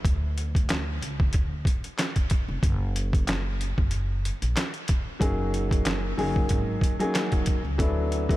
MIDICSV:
0, 0, Header, 1, 4, 480
1, 0, Start_track
1, 0, Key_signature, 6, "major"
1, 0, Tempo, 645161
1, 35, Time_signature, 4, 2, 24, 8
1, 6225, End_track
2, 0, Start_track
2, 0, Title_t, "Upright piano"
2, 0, Program_c, 0, 0
2, 3866, Note_on_c, 0, 54, 92
2, 3869, Note_on_c, 0, 58, 88
2, 3872, Note_on_c, 0, 61, 89
2, 3874, Note_on_c, 0, 63, 89
2, 3878, Note_on_c, 0, 68, 106
2, 4540, Note_off_c, 0, 54, 0
2, 4541, Note_off_c, 0, 58, 0
2, 4543, Note_off_c, 0, 61, 0
2, 4543, Note_off_c, 0, 63, 0
2, 4545, Note_off_c, 0, 68, 0
2, 4594, Note_on_c, 0, 54, 94
2, 4596, Note_on_c, 0, 58, 93
2, 4599, Note_on_c, 0, 61, 79
2, 4601, Note_on_c, 0, 63, 93
2, 4604, Note_on_c, 0, 68, 106
2, 5154, Note_off_c, 0, 54, 0
2, 5156, Note_off_c, 0, 58, 0
2, 5157, Note_off_c, 0, 61, 0
2, 5158, Note_off_c, 0, 63, 0
2, 5159, Note_off_c, 0, 68, 0
2, 5204, Note_on_c, 0, 54, 99
2, 5206, Note_on_c, 0, 58, 86
2, 5209, Note_on_c, 0, 61, 81
2, 5211, Note_on_c, 0, 63, 90
2, 5214, Note_on_c, 0, 68, 101
2, 5643, Note_off_c, 0, 54, 0
2, 5645, Note_off_c, 0, 58, 0
2, 5646, Note_off_c, 0, 61, 0
2, 5647, Note_off_c, 0, 63, 0
2, 5648, Note_off_c, 0, 68, 0
2, 5789, Note_on_c, 0, 54, 94
2, 5791, Note_on_c, 0, 59, 86
2, 5793, Note_on_c, 0, 62, 93
2, 5796, Note_on_c, 0, 64, 89
2, 5799, Note_on_c, 0, 69, 112
2, 6133, Note_off_c, 0, 54, 0
2, 6135, Note_off_c, 0, 59, 0
2, 6136, Note_off_c, 0, 62, 0
2, 6137, Note_off_c, 0, 64, 0
2, 6138, Note_off_c, 0, 69, 0
2, 6166, Note_on_c, 0, 54, 93
2, 6169, Note_on_c, 0, 59, 89
2, 6171, Note_on_c, 0, 62, 82
2, 6174, Note_on_c, 0, 64, 87
2, 6176, Note_on_c, 0, 69, 102
2, 6225, Note_off_c, 0, 54, 0
2, 6225, Note_off_c, 0, 59, 0
2, 6225, Note_off_c, 0, 62, 0
2, 6225, Note_off_c, 0, 64, 0
2, 6225, Note_off_c, 0, 69, 0
2, 6225, End_track
3, 0, Start_track
3, 0, Title_t, "Upright bass"
3, 0, Program_c, 1, 32
3, 35, Note_on_c, 1, 38, 104
3, 725, Note_off_c, 1, 38, 0
3, 754, Note_on_c, 1, 37, 91
3, 945, Note_off_c, 1, 37, 0
3, 1000, Note_on_c, 1, 38, 95
3, 1189, Note_off_c, 1, 38, 0
3, 1849, Note_on_c, 1, 29, 93
3, 1934, Note_off_c, 1, 29, 0
3, 1956, Note_on_c, 1, 30, 106
3, 2779, Note_off_c, 1, 30, 0
3, 2813, Note_on_c, 1, 30, 96
3, 3193, Note_off_c, 1, 30, 0
3, 3289, Note_on_c, 1, 34, 91
3, 3373, Note_off_c, 1, 34, 0
3, 3875, Note_on_c, 1, 30, 98
3, 4565, Note_off_c, 1, 30, 0
3, 4597, Note_on_c, 1, 30, 86
3, 4787, Note_off_c, 1, 30, 0
3, 4841, Note_on_c, 1, 32, 106
3, 5030, Note_off_c, 1, 32, 0
3, 5690, Note_on_c, 1, 37, 89
3, 5774, Note_off_c, 1, 37, 0
3, 5797, Note_on_c, 1, 38, 102
3, 6225, Note_off_c, 1, 38, 0
3, 6225, End_track
4, 0, Start_track
4, 0, Title_t, "Drums"
4, 34, Note_on_c, 9, 36, 120
4, 40, Note_on_c, 9, 42, 102
4, 109, Note_off_c, 9, 36, 0
4, 114, Note_off_c, 9, 42, 0
4, 280, Note_on_c, 9, 42, 81
4, 354, Note_off_c, 9, 42, 0
4, 409, Note_on_c, 9, 36, 93
4, 420, Note_on_c, 9, 42, 56
4, 484, Note_off_c, 9, 36, 0
4, 494, Note_off_c, 9, 42, 0
4, 513, Note_on_c, 9, 42, 87
4, 519, Note_on_c, 9, 39, 87
4, 524, Note_on_c, 9, 38, 112
4, 587, Note_off_c, 9, 42, 0
4, 594, Note_off_c, 9, 39, 0
4, 598, Note_off_c, 9, 38, 0
4, 762, Note_on_c, 9, 42, 74
4, 837, Note_off_c, 9, 42, 0
4, 891, Note_on_c, 9, 36, 95
4, 965, Note_off_c, 9, 36, 0
4, 987, Note_on_c, 9, 42, 94
4, 999, Note_on_c, 9, 36, 82
4, 1062, Note_off_c, 9, 42, 0
4, 1073, Note_off_c, 9, 36, 0
4, 1228, Note_on_c, 9, 36, 96
4, 1243, Note_on_c, 9, 42, 84
4, 1303, Note_off_c, 9, 36, 0
4, 1317, Note_off_c, 9, 42, 0
4, 1370, Note_on_c, 9, 42, 60
4, 1444, Note_off_c, 9, 42, 0
4, 1478, Note_on_c, 9, 39, 93
4, 1478, Note_on_c, 9, 42, 96
4, 1482, Note_on_c, 9, 38, 118
4, 1552, Note_off_c, 9, 39, 0
4, 1553, Note_off_c, 9, 42, 0
4, 1557, Note_off_c, 9, 38, 0
4, 1606, Note_on_c, 9, 42, 49
4, 1609, Note_on_c, 9, 36, 81
4, 1680, Note_off_c, 9, 42, 0
4, 1683, Note_off_c, 9, 36, 0
4, 1709, Note_on_c, 9, 42, 79
4, 1719, Note_on_c, 9, 36, 94
4, 1784, Note_off_c, 9, 42, 0
4, 1793, Note_off_c, 9, 36, 0
4, 1955, Note_on_c, 9, 36, 118
4, 1960, Note_on_c, 9, 42, 97
4, 2029, Note_off_c, 9, 36, 0
4, 2035, Note_off_c, 9, 42, 0
4, 2201, Note_on_c, 9, 42, 84
4, 2276, Note_off_c, 9, 42, 0
4, 2330, Note_on_c, 9, 36, 95
4, 2341, Note_on_c, 9, 42, 54
4, 2405, Note_off_c, 9, 36, 0
4, 2415, Note_off_c, 9, 42, 0
4, 2436, Note_on_c, 9, 42, 89
4, 2443, Note_on_c, 9, 39, 91
4, 2447, Note_on_c, 9, 38, 113
4, 2511, Note_off_c, 9, 42, 0
4, 2517, Note_off_c, 9, 39, 0
4, 2522, Note_off_c, 9, 38, 0
4, 2684, Note_on_c, 9, 42, 74
4, 2759, Note_off_c, 9, 42, 0
4, 2812, Note_on_c, 9, 36, 97
4, 2886, Note_off_c, 9, 36, 0
4, 2908, Note_on_c, 9, 42, 95
4, 2983, Note_off_c, 9, 42, 0
4, 3164, Note_on_c, 9, 42, 84
4, 3238, Note_off_c, 9, 42, 0
4, 3290, Note_on_c, 9, 42, 60
4, 3364, Note_off_c, 9, 42, 0
4, 3398, Note_on_c, 9, 39, 98
4, 3398, Note_on_c, 9, 42, 98
4, 3402, Note_on_c, 9, 38, 120
4, 3472, Note_off_c, 9, 39, 0
4, 3473, Note_off_c, 9, 42, 0
4, 3476, Note_off_c, 9, 38, 0
4, 3525, Note_on_c, 9, 42, 48
4, 3599, Note_off_c, 9, 42, 0
4, 3630, Note_on_c, 9, 42, 80
4, 3639, Note_on_c, 9, 36, 92
4, 3704, Note_off_c, 9, 42, 0
4, 3714, Note_off_c, 9, 36, 0
4, 3875, Note_on_c, 9, 36, 121
4, 3881, Note_on_c, 9, 42, 102
4, 3949, Note_off_c, 9, 36, 0
4, 3955, Note_off_c, 9, 42, 0
4, 4121, Note_on_c, 9, 42, 83
4, 4196, Note_off_c, 9, 42, 0
4, 4250, Note_on_c, 9, 36, 94
4, 4259, Note_on_c, 9, 42, 56
4, 4324, Note_off_c, 9, 36, 0
4, 4334, Note_off_c, 9, 42, 0
4, 4354, Note_on_c, 9, 42, 91
4, 4361, Note_on_c, 9, 39, 88
4, 4365, Note_on_c, 9, 38, 114
4, 4429, Note_off_c, 9, 42, 0
4, 4435, Note_off_c, 9, 39, 0
4, 4439, Note_off_c, 9, 38, 0
4, 4604, Note_on_c, 9, 46, 53
4, 4678, Note_off_c, 9, 46, 0
4, 4732, Note_on_c, 9, 36, 97
4, 4807, Note_off_c, 9, 36, 0
4, 4829, Note_on_c, 9, 42, 94
4, 4840, Note_on_c, 9, 36, 81
4, 4904, Note_off_c, 9, 42, 0
4, 4914, Note_off_c, 9, 36, 0
4, 5070, Note_on_c, 9, 36, 93
4, 5086, Note_on_c, 9, 42, 86
4, 5144, Note_off_c, 9, 36, 0
4, 5160, Note_off_c, 9, 42, 0
4, 5210, Note_on_c, 9, 42, 62
4, 5285, Note_off_c, 9, 42, 0
4, 5319, Note_on_c, 9, 39, 94
4, 5319, Note_on_c, 9, 42, 98
4, 5323, Note_on_c, 9, 38, 120
4, 5393, Note_off_c, 9, 39, 0
4, 5394, Note_off_c, 9, 42, 0
4, 5398, Note_off_c, 9, 38, 0
4, 5445, Note_on_c, 9, 42, 48
4, 5449, Note_on_c, 9, 36, 85
4, 5519, Note_off_c, 9, 42, 0
4, 5524, Note_off_c, 9, 36, 0
4, 5550, Note_on_c, 9, 42, 80
4, 5560, Note_on_c, 9, 36, 92
4, 5624, Note_off_c, 9, 42, 0
4, 5634, Note_off_c, 9, 36, 0
4, 5796, Note_on_c, 9, 36, 118
4, 5801, Note_on_c, 9, 42, 99
4, 5870, Note_off_c, 9, 36, 0
4, 5876, Note_off_c, 9, 42, 0
4, 6041, Note_on_c, 9, 42, 80
4, 6115, Note_off_c, 9, 42, 0
4, 6171, Note_on_c, 9, 36, 92
4, 6180, Note_on_c, 9, 42, 54
4, 6225, Note_off_c, 9, 36, 0
4, 6225, Note_off_c, 9, 42, 0
4, 6225, End_track
0, 0, End_of_file